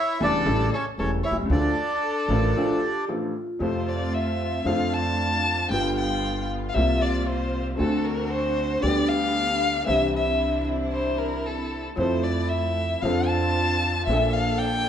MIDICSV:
0, 0, Header, 1, 7, 480
1, 0, Start_track
1, 0, Key_signature, -1, "minor"
1, 0, Tempo, 523560
1, 1380, Time_signature, 4, 2, 24, 8
1, 3311, Key_signature, -1, "major"
1, 13650, End_track
2, 0, Start_track
2, 0, Title_t, "Violin"
2, 0, Program_c, 0, 40
2, 0, Note_on_c, 0, 73, 70
2, 165, Note_off_c, 0, 73, 0
2, 201, Note_on_c, 0, 69, 80
2, 637, Note_off_c, 0, 69, 0
2, 671, Note_on_c, 0, 69, 59
2, 776, Note_off_c, 0, 69, 0
2, 909, Note_on_c, 0, 69, 61
2, 1015, Note_off_c, 0, 69, 0
2, 1132, Note_on_c, 0, 73, 70
2, 1242, Note_off_c, 0, 73, 0
2, 1381, Note_on_c, 0, 69, 65
2, 2789, Note_off_c, 0, 69, 0
2, 3323, Note_on_c, 0, 72, 68
2, 3565, Note_on_c, 0, 74, 71
2, 3578, Note_off_c, 0, 72, 0
2, 3801, Note_on_c, 0, 76, 81
2, 3815, Note_off_c, 0, 74, 0
2, 4277, Note_on_c, 0, 77, 83
2, 4291, Note_off_c, 0, 76, 0
2, 4525, Note_on_c, 0, 81, 95
2, 4539, Note_off_c, 0, 77, 0
2, 5229, Note_off_c, 0, 81, 0
2, 5234, Note_on_c, 0, 79, 86
2, 5455, Note_off_c, 0, 79, 0
2, 5477, Note_on_c, 0, 79, 77
2, 5918, Note_off_c, 0, 79, 0
2, 6133, Note_on_c, 0, 77, 66
2, 6182, Note_on_c, 0, 76, 89
2, 6196, Note_off_c, 0, 77, 0
2, 6431, Note_on_c, 0, 74, 76
2, 6445, Note_off_c, 0, 76, 0
2, 6603, Note_off_c, 0, 74, 0
2, 6603, Note_on_c, 0, 74, 52
2, 6672, Note_on_c, 0, 72, 75
2, 6686, Note_off_c, 0, 74, 0
2, 7027, Note_off_c, 0, 72, 0
2, 7138, Note_on_c, 0, 69, 75
2, 7381, Note_on_c, 0, 70, 76
2, 7395, Note_off_c, 0, 69, 0
2, 7615, Note_on_c, 0, 72, 92
2, 7629, Note_off_c, 0, 70, 0
2, 8088, Note_on_c, 0, 74, 94
2, 8102, Note_off_c, 0, 72, 0
2, 8331, Note_on_c, 0, 77, 101
2, 8345, Note_off_c, 0, 74, 0
2, 9045, Note_off_c, 0, 77, 0
2, 9050, Note_on_c, 0, 76, 85
2, 9277, Note_off_c, 0, 76, 0
2, 9313, Note_on_c, 0, 76, 78
2, 9753, Note_off_c, 0, 76, 0
2, 10019, Note_on_c, 0, 72, 73
2, 10257, Note_on_c, 0, 70, 69
2, 10271, Note_off_c, 0, 72, 0
2, 10504, Note_on_c, 0, 69, 67
2, 10518, Note_off_c, 0, 70, 0
2, 10865, Note_off_c, 0, 69, 0
2, 10980, Note_on_c, 0, 72, 79
2, 11220, Note_on_c, 0, 74, 72
2, 11234, Note_off_c, 0, 72, 0
2, 11453, Note_on_c, 0, 76, 83
2, 11467, Note_off_c, 0, 74, 0
2, 11937, Note_on_c, 0, 77, 85
2, 11951, Note_off_c, 0, 76, 0
2, 12165, Note_on_c, 0, 81, 98
2, 12179, Note_off_c, 0, 77, 0
2, 12888, Note_off_c, 0, 81, 0
2, 12893, Note_on_c, 0, 76, 92
2, 13137, Note_on_c, 0, 77, 82
2, 13151, Note_off_c, 0, 76, 0
2, 13368, Note_on_c, 0, 79, 92
2, 13382, Note_off_c, 0, 77, 0
2, 13650, Note_off_c, 0, 79, 0
2, 13650, End_track
3, 0, Start_track
3, 0, Title_t, "Vibraphone"
3, 0, Program_c, 1, 11
3, 1858, Note_on_c, 1, 69, 75
3, 2083, Note_off_c, 1, 69, 0
3, 2098, Note_on_c, 1, 70, 79
3, 2343, Note_on_c, 1, 69, 82
3, 2347, Note_off_c, 1, 70, 0
3, 2572, Note_on_c, 1, 67, 68
3, 2591, Note_off_c, 1, 69, 0
3, 2803, Note_off_c, 1, 67, 0
3, 2827, Note_on_c, 1, 65, 55
3, 3277, Note_off_c, 1, 65, 0
3, 13650, End_track
4, 0, Start_track
4, 0, Title_t, "Bandoneon"
4, 0, Program_c, 2, 23
4, 0, Note_on_c, 2, 64, 80
4, 0, Note_on_c, 2, 76, 97
4, 167, Note_off_c, 2, 64, 0
4, 207, Note_on_c, 2, 62, 64
4, 217, Note_on_c, 2, 74, 82
4, 224, Note_off_c, 2, 76, 0
4, 641, Note_off_c, 2, 62, 0
4, 646, Note_off_c, 2, 74, 0
4, 672, Note_on_c, 2, 61, 54
4, 683, Note_on_c, 2, 73, 75
4, 777, Note_off_c, 2, 61, 0
4, 786, Note_off_c, 2, 73, 0
4, 908, Note_on_c, 2, 61, 62
4, 916, Note_on_c, 2, 73, 66
4, 1014, Note_off_c, 2, 61, 0
4, 1021, Note_off_c, 2, 73, 0
4, 1147, Note_on_c, 2, 76, 76
4, 1148, Note_on_c, 2, 64, 60
4, 1253, Note_off_c, 2, 76, 0
4, 1254, Note_off_c, 2, 64, 0
4, 1391, Note_on_c, 2, 74, 80
4, 1394, Note_on_c, 2, 62, 63
4, 2795, Note_off_c, 2, 74, 0
4, 2796, Note_off_c, 2, 62, 0
4, 13650, End_track
5, 0, Start_track
5, 0, Title_t, "String section"
5, 0, Program_c, 3, 48
5, 3320, Note_on_c, 3, 60, 55
5, 3321, Note_on_c, 3, 57, 57
5, 3325, Note_on_c, 3, 65, 62
5, 4229, Note_off_c, 3, 57, 0
5, 4229, Note_off_c, 3, 60, 0
5, 4231, Note_off_c, 3, 65, 0
5, 4284, Note_on_c, 3, 57, 59
5, 4285, Note_on_c, 3, 62, 55
5, 4287, Note_on_c, 3, 65, 59
5, 5187, Note_off_c, 3, 57, 0
5, 5188, Note_off_c, 3, 62, 0
5, 5189, Note_off_c, 3, 65, 0
5, 5246, Note_on_c, 3, 55, 52
5, 5246, Note_on_c, 3, 59, 50
5, 5251, Note_on_c, 3, 65, 62
5, 6147, Note_off_c, 3, 55, 0
5, 6147, Note_off_c, 3, 59, 0
5, 6150, Note_off_c, 3, 65, 0
5, 6195, Note_on_c, 3, 58, 61
5, 6200, Note_on_c, 3, 60, 59
5, 6203, Note_on_c, 3, 65, 66
5, 7099, Note_off_c, 3, 58, 0
5, 7101, Note_off_c, 3, 60, 0
5, 7103, Note_off_c, 3, 65, 0
5, 7148, Note_on_c, 3, 60, 59
5, 7149, Note_on_c, 3, 62, 55
5, 7154, Note_on_c, 3, 66, 62
5, 8053, Note_off_c, 3, 60, 0
5, 8053, Note_off_c, 3, 62, 0
5, 8056, Note_off_c, 3, 66, 0
5, 8094, Note_on_c, 3, 59, 64
5, 8099, Note_on_c, 3, 62, 58
5, 8099, Note_on_c, 3, 67, 68
5, 9006, Note_off_c, 3, 59, 0
5, 9009, Note_off_c, 3, 62, 0
5, 9009, Note_off_c, 3, 67, 0
5, 9055, Note_on_c, 3, 60, 54
5, 9060, Note_on_c, 3, 62, 53
5, 9061, Note_on_c, 3, 64, 68
5, 10888, Note_off_c, 3, 60, 0
5, 10891, Note_off_c, 3, 62, 0
5, 10891, Note_off_c, 3, 64, 0
5, 10988, Note_on_c, 3, 57, 53
5, 10988, Note_on_c, 3, 64, 56
5, 11903, Note_off_c, 3, 57, 0
5, 11903, Note_off_c, 3, 64, 0
5, 11958, Note_on_c, 3, 60, 58
5, 11963, Note_on_c, 3, 62, 54
5, 11963, Note_on_c, 3, 65, 70
5, 12869, Note_off_c, 3, 60, 0
5, 12871, Note_off_c, 3, 62, 0
5, 12871, Note_off_c, 3, 65, 0
5, 12922, Note_on_c, 3, 58, 58
5, 12923, Note_on_c, 3, 62, 51
5, 12927, Note_on_c, 3, 69, 66
5, 13650, Note_off_c, 3, 58, 0
5, 13650, Note_off_c, 3, 62, 0
5, 13650, Note_off_c, 3, 69, 0
5, 13650, End_track
6, 0, Start_track
6, 0, Title_t, "Upright piano"
6, 0, Program_c, 4, 0
6, 181, Note_on_c, 4, 49, 58
6, 183, Note_on_c, 4, 28, 67
6, 184, Note_on_c, 4, 55, 51
6, 187, Note_on_c, 4, 57, 54
6, 188, Note_on_c, 4, 40, 73
6, 190, Note_on_c, 4, 64, 69
6, 384, Note_off_c, 4, 49, 0
6, 385, Note_off_c, 4, 28, 0
6, 386, Note_off_c, 4, 55, 0
6, 387, Note_off_c, 4, 57, 0
6, 388, Note_off_c, 4, 40, 0
6, 388, Note_off_c, 4, 64, 0
6, 417, Note_on_c, 4, 55, 64
6, 419, Note_on_c, 4, 45, 83
6, 422, Note_on_c, 4, 33, 79
6, 422, Note_on_c, 4, 49, 68
6, 424, Note_on_c, 4, 57, 58
6, 427, Note_on_c, 4, 64, 75
6, 621, Note_off_c, 4, 55, 0
6, 622, Note_off_c, 4, 45, 0
6, 624, Note_off_c, 4, 33, 0
6, 624, Note_off_c, 4, 49, 0
6, 625, Note_off_c, 4, 57, 0
6, 626, Note_off_c, 4, 64, 0
6, 910, Note_on_c, 4, 49, 39
6, 911, Note_on_c, 4, 28, 46
6, 911, Note_on_c, 4, 55, 36
6, 912, Note_on_c, 4, 57, 36
6, 913, Note_on_c, 4, 64, 42
6, 915, Note_on_c, 4, 40, 44
6, 1107, Note_off_c, 4, 28, 0
6, 1107, Note_off_c, 4, 49, 0
6, 1107, Note_off_c, 4, 55, 0
6, 1108, Note_off_c, 4, 57, 0
6, 1108, Note_off_c, 4, 64, 0
6, 1109, Note_off_c, 4, 40, 0
6, 1211, Note_on_c, 4, 35, 40
6, 1265, Note_off_c, 4, 35, 0
6, 1275, Note_on_c, 4, 36, 48
6, 1327, Note_off_c, 4, 36, 0
6, 1334, Note_on_c, 4, 37, 59
6, 1378, Note_on_c, 4, 50, 74
6, 1382, Note_on_c, 4, 38, 72
6, 1382, Note_on_c, 4, 53, 55
6, 1385, Note_on_c, 4, 57, 55
6, 1387, Note_off_c, 4, 37, 0
6, 1387, Note_on_c, 4, 65, 72
6, 1582, Note_off_c, 4, 38, 0
6, 1582, Note_off_c, 4, 53, 0
6, 1584, Note_off_c, 4, 50, 0
6, 1584, Note_off_c, 4, 57, 0
6, 1585, Note_off_c, 4, 65, 0
6, 2104, Note_on_c, 4, 50, 56
6, 2106, Note_on_c, 4, 45, 69
6, 2106, Note_on_c, 4, 53, 56
6, 2109, Note_on_c, 4, 65, 59
6, 2111, Note_on_c, 4, 33, 67
6, 2112, Note_on_c, 4, 57, 53
6, 2305, Note_off_c, 4, 45, 0
6, 2305, Note_off_c, 4, 50, 0
6, 2305, Note_off_c, 4, 53, 0
6, 2307, Note_off_c, 4, 65, 0
6, 2308, Note_off_c, 4, 33, 0
6, 2309, Note_off_c, 4, 57, 0
6, 2354, Note_on_c, 4, 38, 75
6, 2354, Note_on_c, 4, 57, 60
6, 2355, Note_on_c, 4, 50, 79
6, 2358, Note_on_c, 4, 53, 59
6, 2358, Note_on_c, 4, 65, 66
6, 2550, Note_off_c, 4, 57, 0
6, 2551, Note_off_c, 4, 38, 0
6, 2552, Note_off_c, 4, 50, 0
6, 2552, Note_off_c, 4, 65, 0
6, 2553, Note_off_c, 4, 53, 0
6, 2827, Note_on_c, 4, 50, 38
6, 2830, Note_on_c, 4, 33, 44
6, 2832, Note_on_c, 4, 53, 34
6, 2833, Note_on_c, 4, 57, 35
6, 2834, Note_on_c, 4, 65, 39
6, 2835, Note_on_c, 4, 45, 42
6, 3030, Note_off_c, 4, 50, 0
6, 3032, Note_off_c, 4, 33, 0
6, 3033, Note_off_c, 4, 53, 0
6, 3033, Note_off_c, 4, 57, 0
6, 3034, Note_off_c, 4, 45, 0
6, 3034, Note_off_c, 4, 65, 0
6, 3294, Note_on_c, 4, 48, 52
6, 3304, Note_on_c, 4, 53, 61
6, 3312, Note_on_c, 4, 41, 59
6, 3319, Note_on_c, 4, 57, 48
6, 3328, Note_on_c, 4, 65, 54
6, 4216, Note_off_c, 4, 48, 0
6, 4223, Note_off_c, 4, 53, 0
6, 4225, Note_off_c, 4, 41, 0
6, 4229, Note_off_c, 4, 57, 0
6, 4233, Note_off_c, 4, 65, 0
6, 4257, Note_on_c, 4, 50, 57
6, 4270, Note_on_c, 4, 53, 68
6, 4277, Note_on_c, 4, 41, 65
6, 4286, Note_on_c, 4, 57, 50
6, 4295, Note_on_c, 4, 65, 62
6, 5174, Note_off_c, 4, 50, 0
6, 5184, Note_off_c, 4, 41, 0
6, 5184, Note_off_c, 4, 53, 0
6, 5188, Note_off_c, 4, 57, 0
6, 5193, Note_off_c, 4, 65, 0
6, 5210, Note_on_c, 4, 50, 54
6, 5229, Note_on_c, 4, 31, 61
6, 5229, Note_on_c, 4, 55, 49
6, 5232, Note_on_c, 4, 43, 60
6, 5236, Note_on_c, 4, 59, 48
6, 5250, Note_on_c, 4, 65, 57
6, 6129, Note_off_c, 4, 50, 0
6, 6138, Note_off_c, 4, 55, 0
6, 6139, Note_off_c, 4, 31, 0
6, 6140, Note_off_c, 4, 43, 0
6, 6142, Note_off_c, 4, 59, 0
6, 6149, Note_off_c, 4, 65, 0
6, 6179, Note_on_c, 4, 48, 68
6, 6185, Note_on_c, 4, 55, 53
6, 6196, Note_on_c, 4, 36, 66
6, 6203, Note_on_c, 4, 58, 55
6, 6214, Note_on_c, 4, 65, 67
6, 7094, Note_off_c, 4, 55, 0
6, 7098, Note_off_c, 4, 48, 0
6, 7099, Note_off_c, 4, 36, 0
6, 7102, Note_off_c, 4, 58, 0
6, 7108, Note_off_c, 4, 65, 0
6, 7121, Note_on_c, 4, 50, 62
6, 7127, Note_on_c, 4, 57, 52
6, 7138, Note_on_c, 4, 38, 63
6, 7141, Note_on_c, 4, 60, 49
6, 7153, Note_on_c, 4, 66, 62
6, 8042, Note_off_c, 4, 57, 0
6, 8047, Note_off_c, 4, 50, 0
6, 8048, Note_off_c, 4, 38, 0
6, 8049, Note_off_c, 4, 60, 0
6, 8055, Note_off_c, 4, 66, 0
6, 8072, Note_on_c, 4, 50, 58
6, 8086, Note_off_c, 4, 50, 0
6, 8092, Note_on_c, 4, 55, 55
6, 8094, Note_on_c, 4, 38, 65
6, 8096, Note_on_c, 4, 50, 68
6, 8103, Note_on_c, 4, 59, 52
6, 8112, Note_on_c, 4, 67, 69
6, 9005, Note_off_c, 4, 55, 0
6, 9006, Note_off_c, 4, 38, 0
6, 9007, Note_off_c, 4, 50, 0
6, 9010, Note_off_c, 4, 59, 0
6, 9015, Note_off_c, 4, 67, 0
6, 9028, Note_on_c, 4, 52, 52
6, 9036, Note_on_c, 4, 60, 49
6, 9047, Note_on_c, 4, 36, 68
6, 9049, Note_on_c, 4, 48, 61
6, 9053, Note_on_c, 4, 62, 46
6, 9062, Note_on_c, 4, 67, 57
6, 10875, Note_off_c, 4, 52, 0
6, 10878, Note_off_c, 4, 60, 0
6, 10884, Note_off_c, 4, 36, 0
6, 10885, Note_off_c, 4, 48, 0
6, 10887, Note_off_c, 4, 62, 0
6, 10892, Note_off_c, 4, 67, 0
6, 10963, Note_on_c, 4, 53, 52
6, 10977, Note_off_c, 4, 53, 0
6, 10981, Note_on_c, 4, 53, 62
6, 10982, Note_on_c, 4, 60, 49
6, 10985, Note_on_c, 4, 41, 59
6, 10991, Note_on_c, 4, 64, 51
6, 11006, Note_on_c, 4, 69, 57
6, 11900, Note_off_c, 4, 53, 0
6, 11901, Note_off_c, 4, 60, 0
6, 11902, Note_off_c, 4, 41, 0
6, 11905, Note_off_c, 4, 64, 0
6, 11912, Note_off_c, 4, 69, 0
6, 11945, Note_on_c, 4, 53, 60
6, 11951, Note_on_c, 4, 60, 57
6, 11959, Note_off_c, 4, 53, 0
6, 11959, Note_on_c, 4, 41, 67
6, 11964, Note_on_c, 4, 53, 62
6, 11964, Note_on_c, 4, 62, 53
6, 11978, Note_on_c, 4, 69, 60
6, 12865, Note_off_c, 4, 60, 0
6, 12869, Note_off_c, 4, 41, 0
6, 12872, Note_off_c, 4, 53, 0
6, 12872, Note_off_c, 4, 62, 0
6, 12878, Note_off_c, 4, 69, 0
6, 12907, Note_on_c, 4, 53, 53
6, 12916, Note_on_c, 4, 58, 50
6, 12921, Note_on_c, 4, 46, 63
6, 12923, Note_on_c, 4, 34, 62
6, 12932, Note_on_c, 4, 62, 45
6, 12942, Note_on_c, 4, 69, 61
6, 13650, Note_off_c, 4, 34, 0
6, 13650, Note_off_c, 4, 46, 0
6, 13650, Note_off_c, 4, 53, 0
6, 13650, Note_off_c, 4, 58, 0
6, 13650, Note_off_c, 4, 62, 0
6, 13650, Note_off_c, 4, 69, 0
6, 13650, End_track
7, 0, Start_track
7, 0, Title_t, "Upright bass"
7, 0, Program_c, 5, 32
7, 189, Note_on_c, 5, 28, 90
7, 388, Note_off_c, 5, 28, 0
7, 421, Note_on_c, 5, 33, 81
7, 623, Note_off_c, 5, 33, 0
7, 897, Note_on_c, 5, 28, 54
7, 1100, Note_off_c, 5, 28, 0
7, 1198, Note_on_c, 5, 35, 42
7, 1253, Note_off_c, 5, 35, 0
7, 1258, Note_on_c, 5, 36, 50
7, 1305, Note_off_c, 5, 36, 0
7, 1310, Note_on_c, 5, 37, 63
7, 1367, Note_off_c, 5, 37, 0
7, 1373, Note_on_c, 5, 38, 80
7, 1578, Note_off_c, 5, 38, 0
7, 2093, Note_on_c, 5, 33, 82
7, 2299, Note_off_c, 5, 33, 0
7, 3301, Note_on_c, 5, 41, 61
7, 4220, Note_off_c, 5, 41, 0
7, 4264, Note_on_c, 5, 41, 70
7, 5177, Note_off_c, 5, 41, 0
7, 5225, Note_on_c, 5, 31, 67
7, 6137, Note_off_c, 5, 31, 0
7, 6194, Note_on_c, 5, 36, 67
7, 7098, Note_off_c, 5, 36, 0
7, 7144, Note_on_c, 5, 38, 69
7, 8051, Note_off_c, 5, 38, 0
7, 8098, Note_on_c, 5, 38, 67
7, 9008, Note_off_c, 5, 38, 0
7, 9059, Note_on_c, 5, 36, 65
7, 10890, Note_off_c, 5, 36, 0
7, 10974, Note_on_c, 5, 41, 72
7, 11897, Note_off_c, 5, 41, 0
7, 11941, Note_on_c, 5, 41, 70
7, 12860, Note_off_c, 5, 41, 0
7, 12899, Note_on_c, 5, 34, 71
7, 13650, Note_off_c, 5, 34, 0
7, 13650, End_track
0, 0, End_of_file